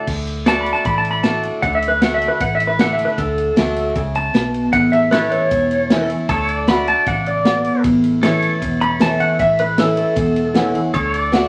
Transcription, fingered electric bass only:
0, 0, Header, 1, 2, 480
1, 0, Start_track
1, 0, Key_signature, 2, "major"
1, 0, Tempo, 388098
1, 93, Time_signature, 4, 2, 24, 8
1, 14200, End_track
2, 0, Start_track
2, 0, Title_t, "Fingered electric bass"
2, 0, Program_c, 0, 33
2, 92, Note_on_c, 0, 38, 91
2, 874, Note_off_c, 0, 38, 0
2, 1048, Note_on_c, 0, 33, 80
2, 1832, Note_off_c, 0, 33, 0
2, 2012, Note_on_c, 0, 38, 99
2, 2795, Note_off_c, 0, 38, 0
2, 2977, Note_on_c, 0, 33, 83
2, 3758, Note_off_c, 0, 33, 0
2, 3931, Note_on_c, 0, 38, 89
2, 4324, Note_off_c, 0, 38, 0
2, 4420, Note_on_c, 0, 38, 90
2, 4826, Note_off_c, 0, 38, 0
2, 4891, Note_on_c, 0, 37, 79
2, 5301, Note_off_c, 0, 37, 0
2, 5377, Note_on_c, 0, 35, 88
2, 5785, Note_off_c, 0, 35, 0
2, 5855, Note_on_c, 0, 33, 88
2, 6637, Note_off_c, 0, 33, 0
2, 6820, Note_on_c, 0, 28, 88
2, 7600, Note_off_c, 0, 28, 0
2, 7779, Note_on_c, 0, 38, 98
2, 8559, Note_off_c, 0, 38, 0
2, 8741, Note_on_c, 0, 33, 86
2, 9520, Note_off_c, 0, 33, 0
2, 9700, Note_on_c, 0, 33, 93
2, 10479, Note_off_c, 0, 33, 0
2, 10657, Note_on_c, 0, 28, 88
2, 11436, Note_off_c, 0, 28, 0
2, 11618, Note_on_c, 0, 33, 102
2, 12397, Note_off_c, 0, 33, 0
2, 12573, Note_on_c, 0, 28, 91
2, 13353, Note_off_c, 0, 28, 0
2, 13526, Note_on_c, 0, 38, 113
2, 14200, Note_off_c, 0, 38, 0
2, 14200, End_track
0, 0, End_of_file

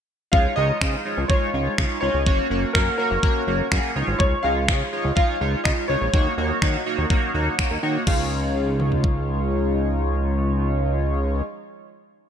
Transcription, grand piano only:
0, 0, Header, 1, 2, 480
1, 0, Start_track
1, 0, Key_signature, -5, "major"
1, 0, Tempo, 483871
1, 327, Time_signature, 4, 2, 24, 8
1, 12194, End_track
2, 0, Start_track
2, 0, Title_t, "Grand piano"
2, 0, Program_c, 0, 0
2, 314, Note_on_c, 0, 77, 104
2, 553, Note_on_c, 0, 75, 101
2, 568, Note_off_c, 0, 77, 0
2, 1241, Note_off_c, 0, 75, 0
2, 1272, Note_on_c, 0, 73, 86
2, 1975, Note_off_c, 0, 73, 0
2, 1990, Note_on_c, 0, 73, 101
2, 2710, Note_on_c, 0, 70, 85
2, 2740, Note_off_c, 0, 73, 0
2, 2938, Note_off_c, 0, 70, 0
2, 2953, Note_on_c, 0, 70, 93
2, 3880, Note_off_c, 0, 70, 0
2, 4153, Note_on_c, 0, 73, 95
2, 4391, Note_on_c, 0, 77, 105
2, 4407, Note_off_c, 0, 73, 0
2, 5098, Note_off_c, 0, 77, 0
2, 5113, Note_on_c, 0, 77, 98
2, 5592, Note_on_c, 0, 75, 96
2, 5615, Note_off_c, 0, 77, 0
2, 5648, Note_off_c, 0, 75, 0
2, 5832, Note_on_c, 0, 73, 93
2, 7240, Note_off_c, 0, 73, 0
2, 8005, Note_on_c, 0, 77, 88
2, 11327, Note_off_c, 0, 77, 0
2, 12194, End_track
0, 0, End_of_file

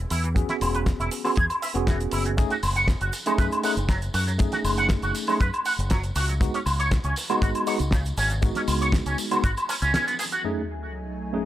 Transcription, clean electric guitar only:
0, 0, Header, 1, 2, 480
1, 0, Start_track
1, 0, Tempo, 504202
1, 344, Time_signature, 4, 2, 24, 8
1, 10902, End_track
2, 0, Start_track
2, 0, Title_t, "Clean electric guitar"
2, 0, Program_c, 0, 27
2, 103, Note_on_c, 0, 64, 75
2, 197, Note_off_c, 0, 64, 0
2, 229, Note_on_c, 0, 52, 74
2, 264, Note_off_c, 0, 52, 0
2, 468, Note_on_c, 0, 64, 97
2, 503, Note_off_c, 0, 64, 0
2, 709, Note_on_c, 0, 71, 76
2, 743, Note_off_c, 0, 71, 0
2, 950, Note_on_c, 0, 64, 74
2, 1036, Note_off_c, 0, 64, 0
2, 1190, Note_on_c, 0, 52, 74
2, 1224, Note_off_c, 0, 52, 0
2, 1304, Note_on_c, 0, 68, 76
2, 1367, Note_off_c, 0, 68, 0
2, 1544, Note_on_c, 0, 76, 76
2, 1606, Note_off_c, 0, 76, 0
2, 1784, Note_on_c, 0, 52, 83
2, 1878, Note_off_c, 0, 52, 0
2, 2023, Note_on_c, 0, 64, 74
2, 2118, Note_off_c, 0, 64, 0
2, 2149, Note_on_c, 0, 52, 72
2, 2183, Note_off_c, 0, 52, 0
2, 2388, Note_on_c, 0, 66, 95
2, 2423, Note_off_c, 0, 66, 0
2, 2628, Note_on_c, 0, 78, 97
2, 2715, Note_off_c, 0, 78, 0
2, 2869, Note_on_c, 0, 66, 75
2, 2955, Note_off_c, 0, 66, 0
2, 3109, Note_on_c, 0, 54, 71
2, 3144, Note_off_c, 0, 54, 0
2, 3223, Note_on_c, 0, 71, 77
2, 3286, Note_off_c, 0, 71, 0
2, 3463, Note_on_c, 0, 78, 73
2, 3526, Note_off_c, 0, 78, 0
2, 3703, Note_on_c, 0, 54, 82
2, 3797, Note_off_c, 0, 54, 0
2, 3942, Note_on_c, 0, 66, 74
2, 4037, Note_off_c, 0, 66, 0
2, 4068, Note_on_c, 0, 54, 75
2, 4103, Note_off_c, 0, 54, 0
2, 4308, Note_on_c, 0, 66, 97
2, 4343, Note_off_c, 0, 66, 0
2, 4549, Note_on_c, 0, 78, 101
2, 4635, Note_off_c, 0, 78, 0
2, 4790, Note_on_c, 0, 66, 71
2, 4876, Note_off_c, 0, 66, 0
2, 5029, Note_on_c, 0, 54, 72
2, 5064, Note_off_c, 0, 54, 0
2, 5143, Note_on_c, 0, 71, 80
2, 5206, Note_off_c, 0, 71, 0
2, 5385, Note_on_c, 0, 78, 76
2, 5447, Note_off_c, 0, 78, 0
2, 5624, Note_on_c, 0, 54, 87
2, 5718, Note_off_c, 0, 54, 0
2, 5863, Note_on_c, 0, 66, 73
2, 5958, Note_off_c, 0, 66, 0
2, 5987, Note_on_c, 0, 54, 75
2, 6023, Note_off_c, 0, 54, 0
2, 6228, Note_on_c, 0, 61, 101
2, 6263, Note_off_c, 0, 61, 0
2, 6467, Note_on_c, 0, 73, 104
2, 6554, Note_off_c, 0, 73, 0
2, 6708, Note_on_c, 0, 61, 73
2, 6795, Note_off_c, 0, 61, 0
2, 6947, Note_on_c, 0, 49, 75
2, 6983, Note_off_c, 0, 49, 0
2, 7063, Note_on_c, 0, 66, 80
2, 7126, Note_off_c, 0, 66, 0
2, 7303, Note_on_c, 0, 73, 78
2, 7366, Note_off_c, 0, 73, 0
2, 7544, Note_on_c, 0, 49, 83
2, 7638, Note_off_c, 0, 49, 0
2, 7783, Note_on_c, 0, 61, 75
2, 7877, Note_off_c, 0, 61, 0
2, 7909, Note_on_c, 0, 49, 78
2, 7943, Note_off_c, 0, 49, 0
2, 8149, Note_on_c, 0, 61, 98
2, 8184, Note_off_c, 0, 61, 0
2, 8390, Note_on_c, 0, 73, 101
2, 8476, Note_off_c, 0, 73, 0
2, 8629, Note_on_c, 0, 61, 72
2, 8715, Note_off_c, 0, 61, 0
2, 8870, Note_on_c, 0, 49, 72
2, 8904, Note_off_c, 0, 49, 0
2, 8984, Note_on_c, 0, 66, 79
2, 9046, Note_off_c, 0, 66, 0
2, 9224, Note_on_c, 0, 61, 103
2, 9262, Note_off_c, 0, 61, 0
2, 9348, Note_on_c, 0, 61, 94
2, 9435, Note_off_c, 0, 61, 0
2, 9463, Note_on_c, 0, 61, 101
2, 9557, Note_off_c, 0, 61, 0
2, 9589, Note_on_c, 0, 59, 100
2, 9646, Note_off_c, 0, 59, 0
2, 9704, Note_on_c, 0, 68, 73
2, 9742, Note_off_c, 0, 68, 0
2, 9828, Note_on_c, 0, 66, 101
2, 9915, Note_off_c, 0, 66, 0
2, 10902, End_track
0, 0, End_of_file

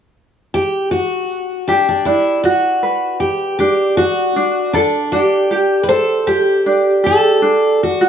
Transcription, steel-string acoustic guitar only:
0, 0, Header, 1, 2, 480
1, 0, Start_track
1, 0, Key_signature, 1, "major"
1, 0, Tempo, 765306
1, 1055, Time_signature, 4, 2, 24, 8
1, 5073, End_track
2, 0, Start_track
2, 0, Title_t, "Steel-string acoustic guitar"
2, 0, Program_c, 0, 25
2, 339, Note_on_c, 0, 67, 71
2, 569, Note_off_c, 0, 67, 0
2, 571, Note_on_c, 0, 66, 69
2, 1051, Note_on_c, 0, 62, 65
2, 1067, Note_off_c, 0, 66, 0
2, 1175, Note_off_c, 0, 62, 0
2, 1183, Note_on_c, 0, 62, 60
2, 1285, Note_off_c, 0, 62, 0
2, 1287, Note_on_c, 0, 64, 59
2, 1514, Note_off_c, 0, 64, 0
2, 1528, Note_on_c, 0, 66, 66
2, 2005, Note_off_c, 0, 66, 0
2, 2007, Note_on_c, 0, 67, 74
2, 2242, Note_off_c, 0, 67, 0
2, 2250, Note_on_c, 0, 67, 72
2, 2488, Note_off_c, 0, 67, 0
2, 2491, Note_on_c, 0, 66, 78
2, 2969, Note_on_c, 0, 62, 76
2, 2987, Note_off_c, 0, 66, 0
2, 3211, Note_on_c, 0, 67, 77
2, 3219, Note_off_c, 0, 62, 0
2, 3656, Note_off_c, 0, 67, 0
2, 3659, Note_on_c, 0, 71, 65
2, 3690, Note_off_c, 0, 71, 0
2, 3693, Note_on_c, 0, 69, 89
2, 3932, Note_on_c, 0, 67, 77
2, 3941, Note_off_c, 0, 69, 0
2, 4430, Note_on_c, 0, 69, 89
2, 4629, Note_off_c, 0, 67, 0
2, 4910, Note_off_c, 0, 69, 0
2, 4912, Note_on_c, 0, 66, 80
2, 5073, Note_off_c, 0, 66, 0
2, 5073, End_track
0, 0, End_of_file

